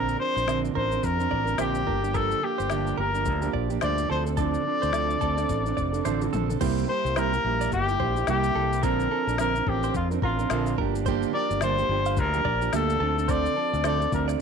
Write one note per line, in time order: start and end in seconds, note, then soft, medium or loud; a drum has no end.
0.00 0.15 A#1 medium
0.00 0.19 A#2 medium
0.00 0.19 D3 medium
0.00 0.17 F3 medium
0.00 0.18 C4 medium
0.00 0.19 D4 medium
0.00 0.19 A#4 medium
0.00 0.20 A#4 medium
0.09 shaker soft
0.18 0.46 F3 medium
0.18 0.46 C4 medium
0.18 0.47 D4 medium
0.18 0.47 A#4 medium
0.18 0.60 C5 loud
0.36 0.68 A#1 medium
0.36 0.47 C5 medium
0.36 shaker soft
0.47 0.75 A#2 medium
0.47 0.75 D3 medium
0.47 0.72 F3 medium
0.47 0.73 C4 medium
0.47 0.74 D4 medium
0.47 0.75 A#4 medium
0.47 snare loud
0.47 shaker medium
0.65 shaker soft
0.74 0.98 A1 medium
0.74 0.91 F3 soft
0.74 0.92 C4 medium
0.74 0.91 D4 medium
0.74 1.17 A#4 medium
0.74 0.90 A#4 medium
0.74 1.06 C5 medium
0.74 kick medium
0.91 1.20 F3 soft
0.91 1.19 C4 soft
0.91 1.18 D4 soft
0.91 1.17 A#4 soft
0.91 shaker medium
1.03 1.26 F2 medium
1.03 1.59 A#4 medium
1.03 kick medium
1.03 shaker medium
1.18 1.48 F3 soft
1.18 1.46 C4 medium
1.18 1.46 D4 soft
1.18 1.45 A#4 medium
1.18 shaker soft
1.31 1.54 A1 medium
1.31 1.47 D5 medium
1.31 kick medium
1.46 1.57 F3 soft
1.46 1.58 C4 soft
1.46 1.58 D4 medium
1.46 1.58 A#4 medium
1.46 shaker soft
1.58 1.82 A#1 medium
1.58 1.86 A#2 medium
1.58 1.86 D3 medium
1.58 1.84 F3 medium
1.58 1.86 C4 medium
1.58 1.86 D4 medium
1.58 2.17 G4 medium
1.58 1.87 A#4 medium
1.58 1.75 C5 medium
1.58 snare loud
1.58 shaker medium
1.75 shaker medium
1.85 2.32 G1 medium
1.85 2.03 F3 medium
1.85 2.03 A#3 medium
1.85 2.02 D4 medium
1.85 2.02 G4 medium
1.85 2.03 A#4 medium
1.85 kick medium
2.03 2.14 F3 soft
2.03 2.14 A#3 soft
2.03 2.15 D4 soft
2.03 2.14 G4 medium
2.03 shaker soft
2.14 2.42 G2 medium
2.14 2.42 D3 medium
2.14 2.41 F3 medium
2.14 2.42 A#3 medium
2.14 2.43 D4 medium
2.14 2.43 G4 medium
2.14 2.45 A4 medium
2.14 2.30 A#4 medium
2.14 kick medium
2.14 shaker medium
2.31 shaker soft
2.42 2.70 F3 medium
2.42 2.70 A#3 medium
2.42 2.71 D4 medium
2.42 2.99 G4 medium
2.42 2.71 G4 medium
2.58 2.91 G1 medium
2.58 2.69 C5 medium
2.58 shaker soft
2.70 2.98 G2 medium
2.70 2.98 D3 medium
2.70 2.97 F3 medium
2.70 2.98 A#3 medium
2.70 2.99 D4 medium
2.70 2.99 G4 medium
2.70 snare loud
2.70 shaker medium
2.87 shaker soft
2.98 3.27 G1 medium
2.98 3.15 F3 soft
2.98 3.15 A#3 medium
2.98 3.14 D4 medium
2.98 3.13 G4 medium
2.98 3.40 A#4 medium
2.98 3.52 A#4 medium
3.14 3.44 F3 soft
3.14 3.42 A#3 soft
3.14 3.42 D4 soft
3.14 3.41 G4 soft
3.14 shaker medium
3.26 3.49 D2 medium
3.26 kick medium
3.26 shaker medium
3.42 3.72 F3 medium
3.42 3.71 A#3 soft
3.42 3.70 D4 medium
3.42 3.69 G4 medium
3.42 shaker soft
3.53 3.77 A#1 medium
3.53 3.70 D5 medium
3.53 kick medium
3.70 3.81 F3 soft
3.70 3.81 A#3 medium
3.70 3.81 D4 soft
3.70 3.82 G4 medium
3.70 shaker medium
3.81 4.05 D2 medium
3.81 4.09 G2 medium
3.81 4.09 D3 medium
3.81 4.08 F3 medium
3.81 4.09 A#3 medium
3.81 4.10 D4 medium
3.81 4.10 G4 medium
3.81 3.97 C5 medium
3.81 4.08 D5 loud
3.81 snare loud
3.81 shaker medium
3.98 shaker medium
4.09 4.56 D2 medium
4.09 4.26 F3 medium
4.09 4.26 C4 medium
4.09 4.26 D4 medium
4.09 4.25 A4 medium
4.09 4.23 C5 medium
4.26 4.37 C4 soft
4.26 4.38 D4 soft
4.26 4.37 A4 medium
4.26 shaker soft
4.37 4.65 D3 medium
4.37 4.63 F3 medium
4.37 4.64 C4 medium
4.37 4.65 D4 medium
4.37 4.53 A4 loud
4.37 4.66 A4 medium
4.37 6.29 D5 loud
4.37 kick loud
4.37 shaker medium
4.54 shaker soft
4.65 4.91 F3 medium
4.65 4.92 C4 medium
4.65 4.93 D4 medium
4.65 4.93 A4 medium
4.82 5.15 D2 medium
4.82 4.93 C5 medium
4.82 shaker medium
4.93 5.21 D3 medium
4.93 5.20 F3 medium
4.93 5.21 C4 medium
4.93 5.21 D4 medium
4.93 5.22 A4 medium
4.93 snare loud
4.93 shaker medium
5.10 shaker soft
5.21 5.44 D2 medium
5.21 5.38 F3 medium
5.21 5.38 C4 medium
5.21 5.38 D4 medium
5.21 5.63 A4 medium
5.21 5.37 A4 medium
5.21 kick medium
5.21 shaker soft
5.38 5.67 C4 soft
5.38 5.66 D4 medium
5.38 5.65 A4 medium
5.38 snare soft
5.38 shaker medium
5.49 5.72 A1 loud
5.49 kick medium
5.49 shaker medium
5.66 5.95 C4 medium
5.66 5.93 D4 medium
5.66 5.92 A4 medium
5.66 shaker soft
5.77 6.00 F1 medium
5.77 5.93 D5 medium
5.77 kick medium
5.77 shaker soft
5.93 6.05 C4 soft
5.93 6.05 D4 medium
5.93 6.04 A4 medium
5.93 shaker soft
6.05 6.28 A1 medium
6.05 6.33 D3 medium
6.05 6.32 F3 medium
6.05 6.33 C4 loud
6.05 6.33 D4 medium
6.05 6.34 A4 medium
6.05 6.21 C5 medium
6.05 snare medium
6.05 shaker medium
6.22 high tom medium
6.22 shaker medium
6.33 6.56 A#1 medium
6.33 6.50 F3 medium
6.33 6.50 C4 medium
6.33 6.50 D4 medium
6.33 6.48 A4 medium
6.33 mid tom medium
6.33 shaker soft
6.49 6.61 C4 soft
6.49 6.61 D4 soft
6.49 6.60 A4 medium
6.49 floor tom medium
6.49 shaker medium
6.60 6.84 C2 medium
6.60 6.88 C3 medium
6.60 6.87 G3 medium
6.60 6.87 A#3 medium
6.60 6.89 E4 medium
6.60 6.89 G4 medium
6.60 6.88 C5 medium
6.60 kick loud
6.60 crash medium
6.60 shaker medium
6.78 shaker soft
6.88 7.05 G3 medium
6.88 7.05 A#3 medium
6.88 7.05 E4 medium
6.88 7.04 G4 medium
6.88 7.15 A#4 medium
6.88 7.19 C5 loud
7.05 7.37 C2 medium
7.05 7.16 A#3 soft
7.05 7.16 E4 soft
7.05 7.16 G4 medium
7.05 shaker soft
7.16 7.33 C3 medium
7.16 7.33 G3 medium
7.16 7.33 A#3 medium
7.16 7.33 E4 medium
7.16 7.32 G4 medium
7.16 7.72 A#4 loud
7.16 7.32 C5 medium
7.16 snare loud
7.16 shaker medium
7.33 7.44 A#3 soft
7.33 7.45 E4 soft
7.33 7.44 G4 medium
7.33 shaker soft
7.44 7.67 A#1 medium
7.44 7.89 G3 medium
7.44 7.89 A#3 medium
7.44 7.89 E4 medium
7.44 7.88 G4 medium
7.61 7.71 D5 medium
7.61 shaker medium
7.72 7.95 G1 medium
7.72 8.24 G4 medium
7.72 kick medium
7.72 shaker medium
7.89 8.00 A#3 soft
7.89 8.01 E4 soft
7.89 8.00 G4 medium
7.89 shaker soft
8.00 8.23 A#1 medium
8.00 8.17 G3 medium
8.00 8.17 A#3 medium
8.00 8.17 E4 medium
8.00 8.15 G4 medium
8.00 8.26 C5 medium
8.00 kick medium
8.16 8.27 A#3 soft
8.16 8.27 E4 soft
8.16 8.28 G4 medium
8.16 shaker soft
8.27 8.50 C2 medium
8.27 8.55 C3 medium
8.27 8.53 G3 medium
8.27 8.55 A#3 medium
8.27 8.56 E4 medium
8.27 8.85 G4 medium
8.27 8.56 G4 medium
8.27 snare loud
8.27 shaker medium
8.44 shaker medium
8.55 8.83 C2 medium
8.55 8.83 G3 medium
8.55 8.83 A#3 medium
8.55 8.84 E4 medium
8.55 8.84 G4 medium
8.55 8.71 A4 medium
8.73 shaker medium
8.83 9.06 A#1 loud
8.83 9.11 A#2 medium
8.83 9.11 D3 medium
8.83 9.09 F3 medium
8.83 9.10 C4 medium
8.83 9.11 D4 medium
8.83 9.09 A#4 medium
8.83 9.39 A#4 medium
8.83 9.12 A#4 medium
8.83 kick loud
8.83 shaker medium
9.00 shaker soft
9.10 9.27 F3 medium
9.10 9.28 C4 medium
9.10 9.28 D4 medium
9.10 9.39 A4 medium
9.10 9.26 A#4 medium
9.27 9.59 A#1 medium
9.27 9.39 F3 soft
9.27 9.39 C4 soft
9.27 9.39 D4 soft
9.27 9.39 A#4 soft
9.27 shaker soft
9.38 9.56 A#2 medium
9.38 9.56 D3 medium
9.38 9.56 F3 medium
9.38 9.56 C4 medium
9.38 9.56 D4 medium
9.38 9.55 A#4 medium
9.38 9.70 A#4 loud
9.38 9.54 A#4 medium
9.38 snare loud
9.38 shaker medium
9.56 9.65 F3 medium
9.56 9.67 C4 medium
9.56 9.67 D4 medium
9.56 9.67 A#4 medium
9.56 shaker soft
9.66 9.89 A1 medium
9.66 10.11 F3 medium
9.66 10.12 C4 medium
9.66 10.11 D4 medium
9.66 9.95 G4 medium
9.66 10.10 A#4 medium
9.66 kick medium
9.83 9.94 C5 medium
9.83 shaker medium
9.94 10.17 F2 medium
9.94 10.08 F4 medium
9.94 kick medium
9.94 shaker medium
10.11 10.20 F3 medium
10.11 10.22 C4 medium
10.11 10.23 D4 medium
10.11 10.22 A#4 medium
10.11 shaker soft
10.22 10.45 A1 medium
10.22 10.39 F3 medium
10.22 10.39 C4 medium
10.22 10.39 D4 medium
10.22 10.75 F4 medium
10.22 10.51 A#4 medium
10.22 10.38 A#4 medium
10.22 kick medium
10.39 10.51 F3 soft
10.39 10.51 C4 medium
10.39 10.51 D4 soft
10.39 10.50 A#4 medium
10.39 shaker medium
10.50 10.73 A#1 loud
10.50 10.78 A#2 medium
10.50 10.79 D3 medium
10.50 10.77 F3 medium
10.50 10.79 C4 medium
10.50 10.79 D4 medium
10.50 10.66 A4 medium
10.50 10.79 A#4 loud
10.50 snare loud
10.50 shaker medium
10.66 shaker medium
10.78 11.24 G1 medium
10.78 11.06 F3 medium
10.78 11.06 A#3 medium
10.78 11.07 D4 medium
10.78 11.07 G4 medium
10.78 10.94 A#4 medium
10.78 kick medium
10.95 shaker soft
11.06 11.34 G2 medium
11.06 11.34 D3 medium
11.06 11.33 F3 medium
11.06 11.34 A#3 medium
11.06 11.35 D4 medium
11.06 11.35 G4 loud
11.06 11.32 C5 loud
11.06 kick loud
11.06 shaker medium
11.22 shaker soft
11.34 11.50 F3 medium
11.34 11.51 A#3 medium
11.34 11.50 D4 medium
11.34 11.49 G4 medium
11.34 11.60 A#4 medium
11.34 11.60 D5 loud
11.50 11.82 G1 medium
11.50 11.61 F3 soft
11.50 11.62 A#3 soft
11.50 11.62 D4 soft
11.50 11.61 G4 soft
11.50 shaker soft
11.61 11.78 G2 medium
11.61 11.79 D3 medium
11.61 11.79 F3 medium
11.61 11.79 A#3 medium
11.61 11.78 D4 medium
11.61 11.77 G4 medium
11.61 12.21 C5 loud
11.61 11.77 D5 medium
11.61 snare loud
11.61 shaker medium
11.78 11.88 F3 soft
11.78 11.89 A#3 medium
11.78 11.90 D4 soft
11.78 11.89 G4 medium
11.78 shaker soft
11.89 12.19 G1 loud
11.89 12.34 F3 medium
11.89 12.34 A#3 medium
11.89 12.34 D4 medium
11.89 12.33 G4 medium
12.06 12.17 F5 medium
12.06 shaker medium
12.17 12.40 D2 medium
12.17 12.74 A#4 medium
12.17 kick loud
12.17 shaker medium
12.34 12.44 F3 medium
12.34 12.45 A#3 medium
12.34 12.46 D4 medium
12.34 12.45 G4 medium
12.34 shaker soft
12.45 12.68 A#1 medium
12.45 12.62 F3 medium
12.45 12.62 A#3 medium
12.45 12.61 D4 medium
12.45 12.60 G4 medium
12.45 12.71 D5 medium
12.45 kick medium
12.61 12.72 F3 soft
12.61 12.72 A#3 medium
12.61 12.73 D4 soft
12.61 12.73 G4 medium
12.61 shaker soft
12.73 12.96 D2 medium
12.73 13.01 G2 medium
12.73 13.01 D3 medium
12.73 12.99 F3 medium
12.73 13.01 A#3 medium
12.73 13.01 D4 medium
12.73 13.02 G4 medium
12.73 13.32 A4 medium
12.73 snare loud
12.73 shaker medium
12.90 shaker medium
13.00 13.46 D2 medium
13.00 13.17 F3 medium
13.00 13.18 C4 medium
13.00 13.17 D4 medium
13.00 13.16 A4 medium
13.17 13.28 C4 soft
13.17 13.29 D4 soft
13.17 13.28 A4 soft
13.17 shaker medium
13.28 13.56 D3 medium
13.28 13.55 F3 medium
13.28 13.56 C4 medium
13.28 13.57 D4 medium
13.28 13.57 A4 medium
13.28 13.55 C5 medium
13.28 13.85 D5 loud
13.28 kick loud
13.28 shaker medium
13.46 shaker soft
13.56 13.73 F3 medium
13.56 13.74 C4 medium
13.56 13.73 D4 medium
13.56 13.83 A4 medium
13.56 13.72 A4 medium
13.73 14.05 D2 medium
13.73 13.84 C4 soft
13.73 13.84 D4 soft
13.73 13.84 A4 soft
13.73 shaker medium
13.84 14.01 D3 medium
13.84 14.01 F3 medium
13.84 14.01 C4 medium
13.84 14.01 D4 medium
13.84 13.99 A4 medium
13.84 14.00 C5 medium
13.84 14.11 D5 loud
13.84 snare loud
13.84 shaker medium
14.01 14.12 C4 soft
14.01 14.13 D4 soft
14.01 14.12 A4 medium
14.01 shaker soft
14.12 14.35 D2 medium
14.12 14.41 F3 medium
14.12 14.41 C4 medium
14.12 14.41 D4 medium
14.12 14.41 A4 medium
14.12 14.26 A#4 medium
14.12 kick medium
14.12 shaker soft
14.28 14.39 D5 medium
14.28 snare soft
14.28 shaker medium